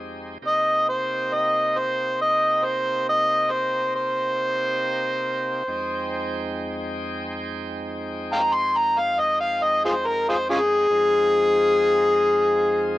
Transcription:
Already playing: tonewheel organ F2 G#3 C4 D#4 G4
0.42 tonewheel organ C3 A#3 C4 D#4 G4
0.47 harmonica D#5
0.89 harmonica C5
1.33 harmonica D#5
1.78 harmonica C5
2.22 harmonica D#5
2.65 harmonica C5
3.09 harmonica D#5
3.51 harmonica C5
3.96 harmonica C5
5.68 tonewheel organ F2 G#3 C4 D#4 G5
8.33 harmonica F5 G5 A#5
8.54 harmonica C6
8.77 harmonica A#5
8.99 harmonica F5
9.19 harmonica D#5
9.40 harmonica F5
9.63 harmonica D#5
9.85 harmonica F4 G#4 C5
10.08 harmonica A#4
10.29 harmonica F4 G#4 C5
10.50 harmonica C#4 F4 G#4
10.90 tonewheel organ F2 F3 G#3 C4 D#4

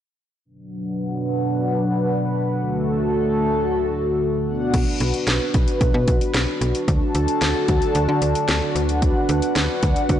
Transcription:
0.45 analog synth pad B2 F#3 D4 B4 F#5
2.59 analog synth pad D2 D3 A3 F#4 A4
4.47 analog synth pad B2 B3 D4 F#5
4.74 fm bass B1, analog synth pad D4 F#4 B4, kick, closed hi-hat, crash
5.00 fm bass B1, closed hi-hat
5.14 closed hi-hat
5.27 fm bass B1, snare, closed hi-hat
5.54 fm bass B1, kick, closed hi-hat
5.68 closed hi-hat
5.81 fm bass B1, kick, closed hi-hat
5.94 fm bass B2
6.08 fm bass B1, kick, closed hi-hat
6.21 closed hi-hat
6.34 fm bass B1, snare, closed hi-hat
6.61 fm bass B1, closed hi-hat
6.75 closed hi-hat
6.88 fm bass D2, analog synth pad D3 A4 A5, kick, closed hi-hat
7.15 fm bass D2, closed hi-hat
7.28 closed hi-hat
7.41 fm bass D2, snare, closed hi-hat
7.68 fm bass D2, kick, closed hi-hat
7.82 closed hi-hat
7.95 fm bass D2, closed hi-hat
8.09 fm bass D3
8.22 fm bass D2, closed hi-hat
8.35 closed hi-hat
8.49 fm bass D2, snare, closed hi-hat
8.75 fm bass D2, analog synth pad B4 F#5, closed hi-hat
8.89 closed hi-hat
9.02 kick, closed hi-hat
9.29 fm bass D2, closed hi-hat
9.42 closed hi-hat
9.56 fm bass D2, snare, closed hi-hat
9.83 fm bass D2, kick, closed hi-hat
9.96 closed hi-hat
10.09 fm bass D2, kick, closed hi-hat

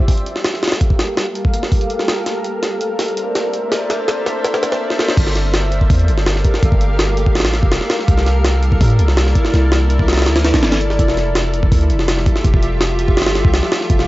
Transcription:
Already playing: ambient pad G4 A4 A#4 F5
0.08 kick, open hi-hat
0.18 closed hi-hat
0.26 closed hi-hat
0.36 snare
0.44 snare, closed hi-hat
0.54 snare
0.63 snare, closed hi-hat
0.68 snare, closed hi-hat
0.72 snare, closed hi-hat
0.81 kick, closed hi-hat
0.90 kick
0.99 snare, closed hi-hat
1.17 snare, closed hi-hat
1.35 closed hi-hat
1.45 kick
1.54 closed hi-hat
1.63 snare
1.72 kick, open hi-hat
1.81 closed hi-hat
1.90 closed hi-hat
1.99 snare
2.08 snare, closed hi-hat
2.26 ambient pad C5 D5 E5, snare, closed hi-hat
2.44 closed hi-hat
2.63 snare, closed hi-hat
2.81 closed hi-hat
2.99 snare, open hi-hat
3.08 closed hi-hat
3.17 closed hi-hat
3.35 snare, closed hi-hat
3.54 closed hi-hat
3.72 snare, closed hi-hat
3.90 snare, closed hi-hat
4.08 snare, closed hi-hat
4.26 snare, closed hi-hat
4.44 snare, closed hi-hat
4.54 snare
4.63 snare, closed hi-hat
4.72 snare
4.90 snare
4.99 snare
5.09 snare
5.17 808-style bass G1, ambient pad G4 A4 A#4 F5, kick, closed hi-hat, crash
5.27 snare
5.36 snare, closed hi-hat
5.54 snare, closed hi-hat
5.72 closed hi-hat
5.81 kick
5.90 808-style bass E2, kick, open hi-hat
5.99 closed hi-hat
6.08 808-style bass G1, closed hi-hat
6.18 snare
6.26 snare, closed hi-hat
6.36 snare
6.45 kick, closed hi-hat
6.54 snare
6.63 808-style bass G1, kick, closed hi-hat
6.72 kick
6.81 closed hi-hat
6.99 snare, closed hi-hat
7.17 closed hi-hat
7.26 kick
7.35 808-style bass A1, snare, closed hi-hat
7.40 snare, closed hi-hat
7.45 snare, closed hi-hat
7.54 snare, closed hi-hat
7.63 808-style bass F1, kick
7.72 snare, closed hi-hat
7.81 snare
7.90 snare, closed hi-hat
7.99 snare
8.08 808-style bass C2, ambient pad E4 D5, kick, closed hi-hat
8.17 snare
8.26 snare, closed hi-hat
8.45 snare, closed hi-hat
8.63 closed hi-hat
8.72 kick
8.81 808-style bass A2, kick, open hi-hat
8.90 closed hi-hat
8.99 808-style bass C2, closed hi-hat
9.08 snare
9.17 snare, closed hi-hat
9.27 snare
9.35 kick, closed hi-hat
9.45 snare
9.54 808-style bass C2, snare, closed hi-hat
9.72 snare, closed hi-hat
9.90 closed hi-hat
9.99 kick
10.08 snare, closed hi-hat
10.13 snare, closed hi-hat
10.17 snare, closed hi-hat
10.22 snare, closed hi-hat
10.26 808-style bass D2, snare, closed hi-hat
10.36 snare, closed hi-hat
10.44 snare, closed hi-hat
10.54 808-style bass A#1, snare, closed hi-hat
10.63 808-style bass G1, snare, closed hi-hat
10.72 snare, closed hi-hat
10.81 closed hi-hat
10.90 snare
10.99 808-style bass F1, ambient pad F4 G4 E5, kick, closed hi-hat
11.08 snare
11.17 snare, closed hi-hat
11.35 snare, closed hi-hat
11.54 closed hi-hat
11.63 kick
11.72 808-style bass D2, kick, open hi-hat
11.81 closed hi-hat
11.90 808-style bass F1, closed hi-hat
11.99 snare
12.08 snare, closed hi-hat
12.17 snare
12.26 kick, closed hi-hat
12.36 snare
12.44 808-style bass F1, kick, closed hi-hat
12.54 kick
12.63 closed hi-hat
12.81 snare, closed hi-hat
12.99 closed hi-hat
13.08 kick
13.17 808-style bass G1, snare, closed hi-hat
13.22 snare, closed hi-hat
13.26 snare, closed hi-hat
13.35 snare, closed hi-hat
13.45 808-style bass C2, kick
13.54 snare, closed hi-hat
13.63 snare
13.72 snare, closed hi-hat
13.81 snare
13.90 808-style bass F1, kick, closed hi-hat
13.99 snare

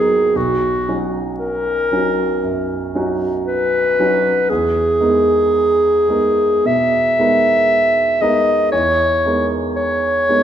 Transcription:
Already playing: grand piano D#2 F#3 B3 D#4 A#4, clarinet G#4
0.36 grand piano B1, clarinet F#4
0.88 grand piano F#3 C#4 D#4 F#4
1.40 clarinet A#4
1.91 grand piano F#3 C#4 D#4 F#4
2.43 grand piano F#2
2.95 grand piano F#3 C#4 D#4 F#4
3.47 clarinet B4
4.00 grand piano F#3 C#4 D#4 F#4
4.50 grand piano E2, clarinet G#4
5.00 grand piano G#3 B3 D#4 A#4
6.09 grand piano G#3 B3 D#4 A#4
6.65 grand piano B2, clarinet E5
7.19 grand piano G#3 B3 D#4 A#4
8.21 grand piano G#3 B3 D#4 A#4, clarinet D#5
8.72 grand piano E2, clarinet C#5
9.26 grand piano G#3 B3 D#4 A#4
9.76 clarinet C#5
10.29 grand piano G#3 B3 D#4 A#4

